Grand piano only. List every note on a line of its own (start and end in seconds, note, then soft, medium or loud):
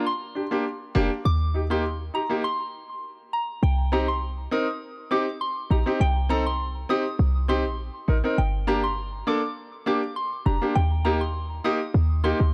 0.35 0.42 D4 soft
0.35 0.43 G4 soft
0.51 0.63 A#3 medium
0.51 0.63 D4 medium
0.51 0.63 G4 medium
0.95 1.08 A#3 medium
0.95 1.08 D4 medium
0.95 1.08 G4 medium
1.54 1.61 D#4 soft
1.54 1.61 G4 soft
1.70 1.82 A#3 medium
1.70 1.82 D#4 medium
1.70 1.82 G4 medium
2.14 2.20 D#4 soft
2.14 2.21 G4 medium
2.29 2.41 A#3 medium
2.29 2.41 D#4 medium
2.29 2.42 G4 medium
3.92 4.05 C4 medium
3.92 4.05 D#4 medium
3.92 4.05 G4 medium
4.51 4.64 C4 medium
4.51 4.65 D#4 medium
4.51 4.65 A#4 medium
5.11 5.24 C4 medium
5.11 5.24 D#4 medium
5.11 5.24 G4 medium
5.70 5.77 D#4 soft
5.70 5.77 G4 soft
5.86 5.97 C4 medium
5.86 5.98 D#4 medium
5.86 5.98 G4 medium
6.29 6.42 C4 medium
6.29 6.43 D#4 medium
6.29 6.43 A4 medium
6.89 7.02 C4 medium
6.89 7.02 D#4 medium
6.89 7.03 G4 medium
7.48 7.61 C4 medium
7.48 7.62 D#4 medium
7.48 7.62 G4 medium
8.08 8.14 D#4 medium
8.08 8.15 A#4 medium
8.24 8.35 C4 medium
8.24 8.35 D#4 medium
8.24 8.36 A#4 medium
8.67 8.80 A#3 medium
8.67 8.80 D4 medium
8.67 8.81 G4 medium
9.27 9.40 A#3 medium
9.27 9.40 D4 medium
9.27 9.40 A4 medium
9.86 9.99 A#3 medium
9.86 9.99 D4 medium
9.86 10.00 G4 medium
10.45 10.52 D4 soft
10.45 10.53 G4 soft
10.62 10.73 A#3 medium
10.62 10.73 D4 medium
10.62 10.73 G4 medium
11.05 11.18 A#3 medium
11.05 11.18 D#4 medium
11.05 11.18 G4 medium
11.64 11.77 A#3 medium
11.64 11.78 D#4 medium
11.64 11.78 G4 medium
12.24 12.37 A#3 medium
12.24 12.37 D#4 medium
12.24 12.37 G4 medium